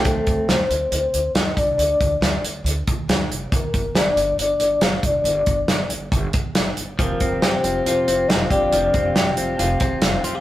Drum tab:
HH |xxxxxxxx|xxxxxxxx|xxxxxxxx|xxxxxxxx|
SD |--o---o-|--o---o-|--o---o-|--o---o-|
BD |oo-----o|-o---o--|oo-----o|-o--oo--|

HH |xxxxxxxx|xxxxxxxx|
SD |--o---o-|--o---o-|
BD |oo-----o|-o---o--|